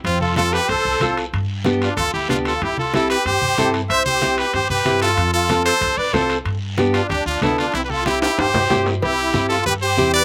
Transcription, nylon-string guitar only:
\new Staff \with { instrumentName = "Nylon-string guitar" } { \time 4/4 \key c \major \tempo 4 = 187 r4 <c' f' a'>8 r4. <c' f' a'>8 r8 | r4 <b d' g'>8 r4. <b d' g'>8 r8 | r4 <c' e' g'>8 r4. <c' e' a'>8 r8 | r4 <c' e' g'>8 r4. <c' e' g'>8 r8 |
r4 <c' f' a'>8 r4. <c' f' a'>8 r8 | r4 <b d' g'>8 r4. <b d' a'>8 r8 | r4 <c' e' g'>8 r4. <c' e' g'>8 r8 | r4 <c' e' g'>8 r4. <c' e' g'>8 r8 | }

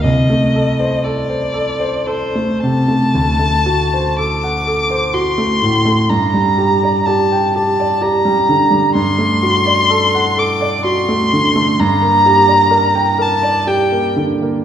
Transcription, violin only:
\new Staff \with { instrumentName = "Violin" } { \time 3/4 \key g \minor \tempo 4 = 62 ees''4 d''4 c''8 a''8~ | a''4 d'''4 c'''4 | bes''4 a''8 a''8 bes''4 | c'''4. d'''8 c'''4 |
bes''4. a''8 g''8 r8 | }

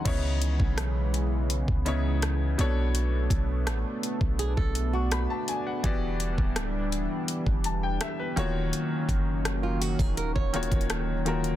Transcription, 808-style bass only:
\new Staff \with { instrumentName = "808-style bass" } { \clef bass \time 4/4 \key cis \dorian \tempo 4 = 83 cis,8. b,,4. cis,4~ cis,16 b,,8~ | b,,8 b,,8 a,,16 r8 b,,8 b,,4 r8. | e,,8. d,,4 r8 e,,8. r8 dis,,8 | r8 fis,,4~ fis,,16 dis,,8 dis,,8 dis,,4~ dis,,16 | }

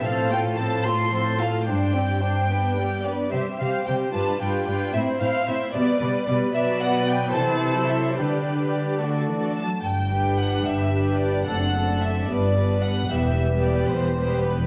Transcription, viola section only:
\new Staff \with { instrumentName = "Viola section" } { \time 6/8 \key g \mixolydian \tempo 4. = 74 << { c'8 a8 c'8 a8 c'8 a8 | d'8 c'8 d'8 d'8 b8 d'8 | c'8 c'8 c'8 d'8 d'8 d'8 | c'8 c'8 c'8 b8 b8 b8 |
\key g \major b4. e'4. | d'4. d'4 r8 | r8 d'4. d'4 | c'8 c'4 b8 b4 |
b8 b4. b4 | } \\ { f8 a8 f8 a8 f8 a8 | d'8 c'8 d'8 b8 g8 b8 | g8 g8 g8 g8 g8 g8 | c'8 c'8 c'8 g8 g8 g8 |
fis4. e8. fis8. | g4. a4~ a16 r16 | r8 g4. g4 | a8 a4 g8 g4 |
g8 g4. g4 | } >> }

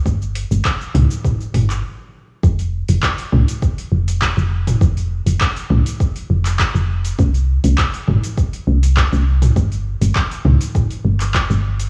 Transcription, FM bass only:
\new Staff \with { instrumentName = "FM bass" } { \clef bass \time 4/4 \key c \phrygian \tempo 4 = 101 g,,8. g,,16 r8 des,16 r8. g,,8 r4 | f,,8. f,,16 r8 c,16 r8. f,,8. f,,8. | f,,8. f,,16 r8 c,16 r8. f,,8. f,,8. | c,8. c,16 r8 g,,16 r8. c,8. c,8. |
g,,8. g,,16 r8 des,16 r8. g,,8. g,,8. | }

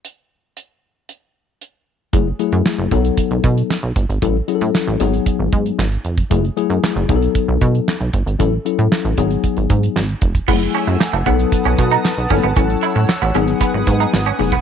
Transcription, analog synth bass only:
\new Staff \with { instrumentName = "Analog synth bass" } { \clef bass \time 4/4 \key fis \dorian \tempo 4 = 115 r1 | fis,,8 r16 fis,16 r16 fis,,16 b,,8 r16 b,,16 b,8 r16 b,,16 g,,16 gis,,16 | a,,8 r16 a,16 r16 a,,16 gis,,8 r16 gis,,16 gis,8 gis,,8 eis,,8 | fis,,8 r16 fis,16 r16 fis,,16 b,,8 r16 b,,16 b,8 r16 b,,16 g,,16 gis,,16 |
a,,8 r16 a,16 r16 a,,16 gis,,8 r16 gis,,16 gis,8 gis,,8 eis,,8 | fis,,8 r16 fis,16 r16 fis,,16 b,,8 r16 b,,16 b,8 r16 b,,16 g,,16 gis,,16 | a,,8 r16 a,16 r16 a,,16 gis,,8 r16 gis,,16 gis,8 gis,,8 eis,,8 | }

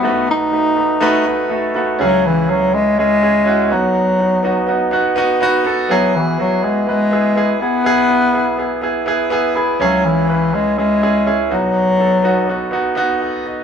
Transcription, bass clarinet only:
\new Staff \with { instrumentName = "Bass clarinet" } { \clef bass \time 4/4 \key e \major \tempo 4 = 123 b8 dis'2. r8 | fis8 e8 fis8 gis8 gis4. fis8~ | fis2~ fis8 r4. | fis8 e8 fis8 gis8 gis4. b8~ |
b2~ b8 r4. | fis8 e4 gis8 gis4. fis8~ | fis2~ fis8 r4. | }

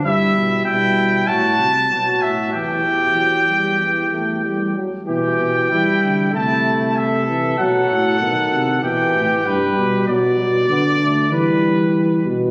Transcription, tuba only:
\new Staff \with { instrumentName = "Tuba" } { \clef bass \time 4/4 \key e \minor \tempo 4 = 96 g,8 b,8 b,4 a,8 c8 b,8 a,8 | e,2.~ e,8 r8 | b,8 b,8 e8 d8 c2 | b,8 a,8 b,8 c8 b,8 a,8 g,8 b,8 |
b,4 d4 e4. b,8 | }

